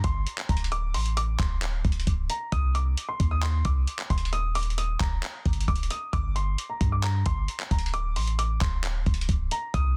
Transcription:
0.04 G1 C6, kick, closed hi-hat
0.27 closed hi-hat
0.38 clap
0.49 D1 A#5, kick, closed hi-hat
0.57 closed hi-hat
0.64 closed hi-hat
0.72 D6, closed hi-hat
0.94 A1 C6, closed hi-hat, open hi-hat
1.06 closed hi-hat
1.17 D6, closed hi-hat
1.39 D1 C6, kick, clap, closed hi-hat
1.62 clap, closed hi-hat
1.85 D1, kick, closed hi-hat
1.92 closed hi-hat
2.00 closed hi-hat
2.07 C1, kick, closed hi-hat
2.30 A#5, closed hi-hat
2.52 C2 D#6, kick, closed hi-hat
2.75 D6, closed hi-hat
2.97 closed hi-hat
3.09 C6
3.20 D#2, kick, closed hi-hat
3.31 D#6
3.42 C6, clap, closed hi-hat
3.65 C2 D6, kick, closed hi-hat
3.87 closed hi-hat
3.99 clap
4.10 D#1 C6, kick, closed hi-hat
4.18 closed hi-hat
4.25 closed hi-hat
4.33 D#6, closed hi-hat
4.55 D6, closed hi-hat, open hi-hat
4.63 closed hi-hat
4.70 closed hi-hat
4.78 D#6, closed hi-hat
5.00 D#1 A#5, kick, clap, closed hi-hat
5.23 clap, closed hi-hat
5.46 G1, kick, closed hi-hat
5.53 closed hi-hat
5.61 closed hi-hat
5.68 D#1 D6, kick, closed hi-hat
5.76 closed hi-hat
5.83 closed hi-hat
5.90 D#6, closed hi-hat
6.13 G1 D6, kick, closed hi-hat
6.36 C6, closed hi-hat
6.58 closed hi-hat
6.70 A#5
6.81 G2, kick, closed hi-hat
6.92 D6
7.03 A#5, clap, closed hi-hat
7.26 G1 C6, kick, closed hi-hat
7.48 closed hi-hat
7.60 clap
7.71 D1 A#5, kick, closed hi-hat
7.79 closed hi-hat
7.86 closed hi-hat
7.94 D6, closed hi-hat
8.16 A1 C6, closed hi-hat, open hi-hat
8.27 closed hi-hat
8.39 D6, closed hi-hat
8.61 D1 C6, kick, clap, closed hi-hat
8.83 clap, closed hi-hat
9.06 D1, kick, closed hi-hat
9.14 closed hi-hat
9.21 closed hi-hat
9.29 C1, kick, closed hi-hat
9.51 A#5, closed hi-hat
9.74 C2 D#6, kick, closed hi-hat

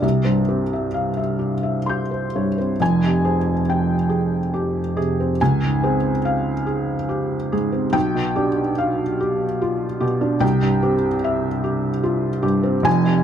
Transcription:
0.02 C2 E5
0.24 G2 C5
0.48 C4 G4
0.73 E5
0.94 F5
1.17 E5
1.39 G4
1.63 E5
1.86 G4 C6 G6
2.11 C5
2.36 G2 C#5
2.58 C4 C5
2.80 F1 F2 G#5
3.04 C3
3.25 C4 G#4
3.70 G5
4.09 G#4
4.54 G4
4.97 C3 G#4
5.20 C4
5.41 C#2 G#5
5.64 G#2
5.83 C4 G#4
6.25 F5
6.67 G#4
7.09 G4
7.52 G#2 G#4
7.72 C4
7.93 B1 G5
8.15 B2
8.36 D4 G4
8.78 F5
9.20 G4
9.62 F4
10.00 B2 G4
10.21 D4
10.40 C2 G5
10.62 G2
10.83 C4 G4
11.24 E5
11.64 G4
12.03 F4
12.42 G2 G4
12.63 C4
12.83 F1 F2 G#5
13.06 C3

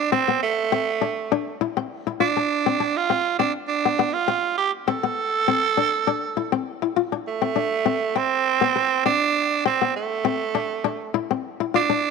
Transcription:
0.12 C4
0.28 B3
0.43 A3
0.72 C4
1.01 D4
1.32 D4
1.61 E4
1.77 C4
2.07 E4
2.20 D4 F4
2.37 D4
2.66 C4
2.80 D4
2.97 F4
3.10 C4
3.39 C4 D4
3.68 D4
3.85 B3
3.99 B3
4.13 F4
4.28 C4
4.58 G4
4.88 C4 A4
5.03 B3
5.48 C4
5.77 D4
6.07 D4
6.37 E4
6.52 C4
6.82 E4
6.96 F4
7.12 D4
7.28 A3
7.42 C4
7.56 D4
7.86 C4
8.16 C4
8.61 B3
8.76 B4
9.06 C4 D4
9.66 C4
9.82 B3
9.96 A3
10.25 C4
10.55 D4
10.84 D4
11.14 E4
11.31 C4
11.60 E4
11.74 D4 F4
11.90 D4

